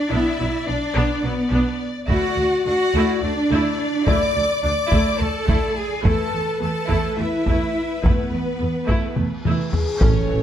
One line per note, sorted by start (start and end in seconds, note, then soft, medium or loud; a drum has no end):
0.00 0.11 D4 medium
0.00 2.04 D5 medium
0.09 0.19 B1 medium
0.09 0.36 B3 medium
0.09 0.36 D4 soft
0.09 0.67 E4 medium
0.09 0.68 E4 medium
0.09 0.68 E5 medium
0.38 0.48 B1 soft
0.38 0.46 F#3 soft
0.38 0.46 B3 soft
0.66 0.76 B1 soft
0.66 0.74 B3 soft
0.66 1.24 D4 medium
0.66 1.25 D4 medium
0.66 1.23 D5 medium
0.94 1.03 B1 medium
0.94 1.21 B3 medium
0.94 1.21 D4 medium
1.23 1.31 B1 soft
1.23 1.32 F#3 medium
1.23 1.80 B3 medium
1.23 1.32 B3 medium
1.23 1.82 B3 medium
1.23 1.80 B4 soft
1.51 1.59 B1 medium
1.51 1.79 B3 medium
1.51 1.79 D4 medium
2.07 2.16 D2 medium
2.07 2.35 A3 medium
2.07 2.35 E4 medium
2.07 2.61 F#4 medium
2.07 2.62 F#4 medium
2.07 6.00 D5 medium
2.07 2.62 F#5 medium
2.07 taiko medium
2.36 2.44 D2 soft
2.36 2.46 A3 soft
2.65 2.73 D2 soft
2.65 2.74 A3 soft
2.65 2.74 D4 soft
2.65 3.21 F#4 medium
2.65 3.22 F#5 medium
2.93 3.01 D2 medium
2.93 3.20 A3 medium
2.93 3.20 E4 medium
3.22 3.30 D2 soft
3.22 3.31 A3 medium
3.22 4.05 D4 medium
3.22 4.07 D4 medium
3.22 4.05 D5 medium
3.51 3.59 D2 medium
3.51 3.77 A3 medium
3.51 3.77 E4 medium
4.07 4.15 D2 medium
4.07 4.33 A3 medium
4.07 4.34 E4 medium
4.07 4.62 D5 medium
4.07 4.63 D5 medium
4.07 4.63 D6 medium
4.07 taiko medium
4.35 4.43 D2 medium
4.35 4.44 A3 soft
4.63 4.72 D2 soft
4.63 4.71 A3 soft
4.63 4.71 D4 soft
4.63 5.19 D5 medium
4.63 5.19 D6 medium
4.91 5.00 D2 medium
4.91 5.18 A3 medium
4.91 5.18 E4 medium
4.91 taiko medium
5.19 5.28 D2 soft
5.19 5.27 A3 medium
5.19 5.77 A4 medium
5.19 5.77 A5 medium
5.47 5.56 D2 medium
5.47 5.74 A3 medium
5.47 5.74 E4 medium
5.47 taiko medium
5.77 6.05 G#4 medium
5.77 6.06 G#5 medium
6.04 6.12 E2 medium
6.04 6.30 A3 medium
6.04 6.31 E4 medium
6.04 6.61 A4 medium
6.04 6.60 A4 medium
6.04 9.78 B4 medium
6.04 6.62 A5 medium
6.04 taiko medium
6.32 6.41 E2 soft
6.32 6.40 A3 soft
6.61 6.69 E2 soft
6.61 6.69 A3 soft
6.61 6.69 B3 soft
6.61 7.17 A4 medium
6.61 7.18 A4 medium
6.61 7.18 A5 medium
6.88 6.97 E2 medium
6.88 7.15 A3 medium
6.88 7.15 E4 medium
6.88 taiko medium
7.16 7.27 E2 soft
7.16 7.24 A3 medium
7.16 8.01 E4 medium
7.16 8.03 E4 medium
7.16 8.02 E5 medium
7.47 7.55 E2 medium
7.47 7.73 A3 soft
7.47 7.73 E4 soft
7.47 taiko medium
8.02 8.12 E2 medium
8.02 8.29 A3 soft
8.02 9.16 B3 medium
8.02 9.14 B3 medium
8.02 8.29 E4 soft
8.02 9.17 B4 soft
8.02 taiko medium
8.02 cymbal swell medium
8.31 8.39 E2 soft
8.31 8.39 A3 soft
8.59 8.68 E2 soft
8.59 8.67 A3 soft
8.59 8.67 B3 soft
8.87 8.96 E2 soft
8.87 9.14 A3 medium
8.87 9.14 E4 medium
8.87 taiko medium
9.16 9.25 E2 soft
9.16 9.25 A3 soft
9.16 taiko mid medium
9.44 9.54 E2 soft
9.44 9.71 A3 soft
9.44 9.71 E4 soft
9.44 taiko mid medium
9.73 9.99 G#4 medium
9.73 taiko low medium
10.00 10.12 A1 medium
10.00 10.11 A1 medium
10.00 10.09 A2 medium
10.00 10.43 E3 medium
10.00 10.27 C#4 medium
10.00 10.43 C#4 medium
10.00 10.43 A4 medium
10.00 10.43 C#5 medium
10.00 taiko medium
10.00 impact medium
10.04 10.43 C#5 medium
10.29 10.40 A1 soft
10.29 10.38 A2 soft
10.29 10.37 E3 soft